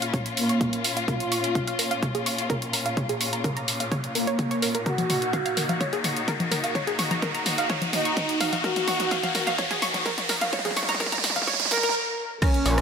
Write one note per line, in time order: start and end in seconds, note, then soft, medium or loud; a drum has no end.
0.00 11.91 A#2 medium
0.00 4.82 A#3 medium
0.00 4.82 C#4 medium
0.00 4.82 F4 medium
0.00 0.10 F5 medium
0.00 closed hi-hat medium
0.00 riser medium
0.14 0.19 C#5 medium
0.14 kick loud
0.14 closed hi-hat medium
0.14 mid tom medium
0.26 closed hi-hat medium
0.37 0.99 A#3 medium
0.37 open hi-hat loud
0.49 0.54 C#6 medium
0.49 closed hi-hat medium
0.61 kick loud
0.61 closed hi-hat medium
0.61 mid tom medium
0.73 closed hi-hat medium
0.84 0.90 F5 medium
0.84 open hi-hat loud
0.97 1.04 F5 medium
0.97 closed hi-hat medium
1.08 1.93 F4 loud
1.08 1.13 A#4 medium
1.08 kick loud
1.08 closed hi-hat medium
1.08 mid tom medium
1.20 closed hi-hat medium
1.32 1.37 C#6 medium
1.32 open hi-hat loud
1.44 closed hi-hat medium
1.55 1.61 F5 medium
1.55 kick loud
1.55 closed hi-hat medium
1.55 mid tom medium
1.68 1.72 F5 medium
1.68 closed hi-hat medium
1.79 1.84 A#4 medium
1.79 open hi-hat loud
1.91 1.99 F5 medium
1.91 closed hi-hat medium
2.03 2.08 C#5 medium
2.03 kick loud
2.03 closed hi-hat medium
2.03 mid tom medium
2.15 2.20 G#4 medium
2.15 closed hi-hat soft
2.26 2.31 C#6 medium
2.26 open hi-hat loud
2.38 closed hi-hat medium
2.50 2.53 A#4 medium
2.50 kick loud
2.50 closed hi-hat medium
2.50 mid tom medium
2.62 closed hi-hat medium
2.73 2.79 A#4 medium
2.73 open hi-hat loud
2.86 2.93 F5 medium
2.86 closed hi-hat medium
2.97 3.02 C#5 medium
2.97 kick loud
2.97 closed hi-hat soft
2.97 mid tom medium
3.09 3.14 G#4 medium
3.09 closed hi-hat medium
3.21 3.26 C#6 medium
3.21 open hi-hat loud
3.33 3.38 A#5 medium
3.33 closed hi-hat medium
3.44 3.48 A#4 medium
3.44 kick loud
3.44 closed hi-hat medium
3.44 mid tom medium
3.57 3.61 A#5 medium
3.57 closed hi-hat medium
3.68 open hi-hat loud
3.80 3.88 F5 medium
3.80 closed hi-hat medium
3.92 3.97 C#5 medium
3.92 kick loud
3.92 closed hi-hat medium
3.92 mid tom medium
4.04 closed hi-hat soft
4.15 4.77 A#3 loud
4.15 4.20 A#4 medium
4.15 open hi-hat loud
4.27 4.32 C#5 medium
4.27 closed hi-hat medium
4.39 kick loud
4.39 closed hi-hat soft
4.39 mid tom medium
4.51 4.56 C#5 loud
4.51 closed hi-hat medium
4.62 4.66 A#4 loud
4.62 open hi-hat loud
4.75 4.80 A#4 medium
4.75 closed hi-hat medium
4.86 11.91 A#3 medium
4.86 11.91 D#4 medium
4.86 11.91 F#4 medium
4.86 5.71 F#4 loud
4.86 4.91 A#4 medium
4.86 kick loud
4.86 closed hi-hat medium
4.86 mid tom medium
4.98 closed hi-hat soft
4.98 low conga medium
5.10 5.15 C#6 medium
5.10 open hi-hat loud
5.10 mid tom medium
5.22 closed hi-hat medium
5.33 5.39 F5 medium
5.33 kick loud
5.33 closed hi-hat medium
5.33 mid tom medium
5.46 5.50 F5 medium
5.46 closed hi-hat medium
5.57 5.62 A#4 medium
5.57 open hi-hat loud
5.57 mid tom medium
5.69 5.77 F5 medium
5.69 closed hi-hat medium
5.69 low conga medium
5.81 5.86 C#5 medium
5.81 kick loud
5.81 closed hi-hat medium
5.81 mid tom medium
5.93 5.98 G#4 medium
5.93 closed hi-hat soft
6.04 6.10 C#6 medium
6.04 open hi-hat loud
6.04 mid tom medium
6.16 closed hi-hat medium
6.28 6.31 A#4 medium
6.28 kick loud
6.28 closed hi-hat medium
6.28 mid tom medium
6.40 closed hi-hat medium
6.40 low conga medium
6.51 6.57 A#4 medium
6.51 open hi-hat loud
6.51 mid tom medium
6.64 6.71 F5 medium
6.64 closed hi-hat medium
6.75 6.80 C#5 medium
6.75 kick loud
6.75 closed hi-hat medium
6.75 mid tom medium
6.87 6.92 G#4 medium
6.87 closed hi-hat medium
6.99 7.04 C#6 medium
6.99 open hi-hat loud
6.99 mid tom medium
7.11 7.16 A#5 medium
7.11 closed hi-hat medium
7.11 low conga loud
7.22 7.25 A#4 medium
7.22 kick loud
7.22 closed hi-hat medium
7.22 mid tom medium
7.35 7.39 A#5 medium
7.35 closed hi-hat medium
7.46 open hi-hat loud
7.46 mid tom medium
7.58 7.66 F5 medium
7.58 closed hi-hat medium
7.70 7.75 C#5 medium
7.70 kick loud
7.70 closed hi-hat medium
7.70 mid tom medium
7.82 closed hi-hat medium
7.82 low conga medium
7.93 8.55 D#4 medium
7.93 open hi-hat loud
7.93 mid tom medium
8.05 8.10 C#6 medium
8.05 closed hi-hat medium
8.17 kick loud
8.17 closed hi-hat medium
8.17 mid tom medium
8.29 closed hi-hat medium
8.41 8.46 F5 medium
8.41 open hi-hat loud
8.41 mid tom medium
8.53 8.60 F5 medium
8.53 closed hi-hat medium
8.53 low conga medium
8.64 9.49 F#4 loud
8.64 8.69 A#4 medium
8.64 kick loud
8.64 closed hi-hat medium
8.64 mid tom medium
8.76 closed hi-hat medium
8.76 mid tom medium
8.88 8.93 C#6 medium
8.88 open hi-hat loud
8.88 mid tom loud
9.00 closed hi-hat medium
9.00 mid tom medium
9.11 9.17 F5 medium
9.11 kick loud
9.11 closed hi-hat medium
9.11 mid tom medium
9.23 9.28 F5 medium
9.23 closed hi-hat medium
9.23 mid tom medium
9.23 low conga loud
9.35 9.40 A#4 medium
9.35 open hi-hat loud
9.35 mid tom loud
9.47 9.54 F5 medium
9.47 closed hi-hat medium
9.47 mid tom medium
9.58 9.64 C#5 medium
9.58 kick loud
9.58 closed hi-hat medium
9.58 mid tom loud
9.71 9.76 G#4 medium
9.71 closed hi-hat medium
9.71 mid tom medium
9.82 9.87 C#6 medium
9.82 open hi-hat loud
9.82 mid tom medium
9.94 closed hi-hat medium
9.94 mid tom medium
9.94 low conga loud
10.06 10.09 A#4 medium
10.06 kick loud
10.06 closed hi-hat medium
10.06 mid tom loud
10.18 closed hi-hat medium
10.18 mid tom medium
10.29 10.35 A#4 medium
10.29 open hi-hat loud
10.29 mid tom loud
10.41 10.49 F5 medium
10.41 closed hi-hat medium
10.41 mid tom medium
10.53 10.58 C#5 medium
10.53 kick loud
10.53 closed hi-hat medium
10.53 mid tom loud
10.59 mid tom medium
10.65 10.70 G#4 medium
10.65 closed hi-hat medium
10.65 mid tom medium
10.65 low conga loud
10.71 mid tom medium
10.77 10.82 C#6 medium
10.77 open hi-hat loud
10.77 mid tom loud
10.83 mid tom medium
10.89 10.94 A#5 medium
10.89 closed hi-hat medium
10.89 mid tom medium
10.94 mid tom medium
11.00 11.03 A#4 medium
11.00 kick loud
11.00 closed hi-hat medium
11.00 mid tom loud
11.06 mid tom loud
11.12 11.17 A#5 medium
11.12 closed hi-hat medium
11.12 mid tom medium
11.18 mid tom loud
11.24 open hi-hat loud
11.24 mid tom loud
11.30 mid tom loud
11.36 11.43 F5 medium
11.36 closed hi-hat medium
11.36 mid tom medium
11.36 low conga loud
11.42 mid tom medium
11.47 11.53 C#5 medium
11.47 kick loud
11.47 closed hi-hat medium
11.47 mid tom loud
11.54 mid tom medium
11.60 closed hi-hat medium
11.60 mid tom medium
11.65 mid tom medium
11.71 11.95 A#4 loud
11.71 open hi-hat loud
11.71 mid tom loud
11.77 mid tom loud
11.83 11.88 A#4 loud
11.83 closed hi-hat medium
11.83 mid tom loud
11.89 mid tom loud
12.42 12.81 C#3 medium
12.42 12.81 F3 medium
12.42 12.81 A#3 medium
12.42 12.81 C#4 loud
12.42 12.47 A#4 medium
12.42 kick loud
12.42 cross-stick soft
12.42 closed hi-hat loud
12.42 closed hi-hat medium
12.42 crash loud
12.42 low conga medium
12.54 closed hi-hat medium
12.66 12.81 A#1 loud
12.66 12.71 C#6 medium
12.66 closed hi-hat medium
12.66 open hi-hat loud
12.78 cross-stick medium
12.78 closed hi-hat medium
12.78 closed hi-hat soft